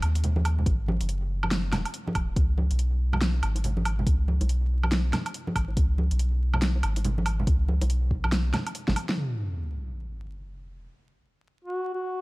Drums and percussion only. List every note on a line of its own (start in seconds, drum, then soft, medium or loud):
0.02 closed hi-hat medium
0.02 low woodblock medium
0.15 closed hi-hat medium
0.24 closed hi-hat medium
0.24 low conga medium
0.36 high conga medium
0.45 closed hi-hat medium
0.45 low woodblock medium
0.59 low conga medium
0.66 kick loud
0.66 closed hi-hat medium
0.88 high conga medium
1.01 closed hi-hat medium
1.09 closed hi-hat medium
1.43 high conga medium
1.43 low woodblock medium
1.51 snare loud
1.51 closed hi-hat medium
1.72 snare medium
1.72 closed hi-hat medium
1.72 low conga medium
1.72 low woodblock medium
1.85 closed hi-hat soft
1.85 low woodblock soft
1.94 closed hi-hat medium
2.07 high conga medium
2.15 kick medium
2.15 closed hi-hat medium
2.15 low woodblock medium
2.36 kick loud
2.36 closed hi-hat medium
2.58 high conga medium
2.71 closed hi-hat medium
2.79 closed hi-hat medium
3.13 high conga medium
3.13 low conga medium
3.13 low woodblock medium
3.22 snare loud
3.22 closed hi-hat medium
3.34 high bongo soft
3.43 closed hi-hat soft
3.43 low woodblock medium
3.55 closed hi-hat soft
3.55 high bongo soft
3.64 closed hi-hat medium
3.64 low conga medium
3.77 high conga medium
3.85 open hi-hat medium
3.85 low woodblock medium
3.99 low conga medium
4.07 kick loud
4.07 closed hi-hat medium
4.28 high conga medium
4.41 closed hi-hat soft
4.41 high bongo medium
4.49 closed hi-hat medium
4.84 high conga medium
4.84 low woodblock medium
4.91 snare loud
4.91 closed hi-hat medium
4.91 high bongo medium
5.13 snare medium
5.13 closed hi-hat soft
5.13 low conga medium
5.13 low woodblock medium
5.26 closed hi-hat medium
5.26 low woodblock medium
5.34 closed hi-hat medium
5.47 high conga medium
5.56 kick medium
5.56 open hi-hat medium
5.56 low woodblock medium
5.68 high bongo soft
5.77 kick loud
5.77 closed hi-hat medium
5.98 high conga medium
6.11 closed hi-hat medium
6.19 closed hi-hat medium
6.53 high conga medium
6.53 low conga medium
6.53 low woodblock medium
6.62 snare loud
6.62 closed hi-hat medium
6.76 high bongo soft
6.83 closed hi-hat soft
6.83 low woodblock medium
6.96 closed hi-hat medium
6.96 high bongo soft
7.04 closed hi-hat medium
7.04 low conga medium
7.18 high conga medium
7.26 open hi-hat medium
7.26 low woodblock medium
7.40 low conga medium
7.47 kick loud
7.47 closed hi-hat medium
7.68 high conga medium
7.81 closed hi-hat medium
7.81 high bongo medium
7.90 closed hi-hat medium
8.11 kick medium
8.24 high conga medium
8.24 low woodblock medium
8.32 snare loud
8.32 closed hi-hat medium
8.32 high bongo medium
8.54 snare medium
8.54 closed hi-hat medium
8.54 low conga medium
8.54 low woodblock medium
8.67 closed hi-hat medium
8.67 low woodblock soft
8.75 closed hi-hat medium
8.88 snare medium
8.88 high conga medium
8.88 low conga medium
8.96 open hi-hat loud
8.96 low woodblock medium
9.09 snare medium
9.09 high bongo soft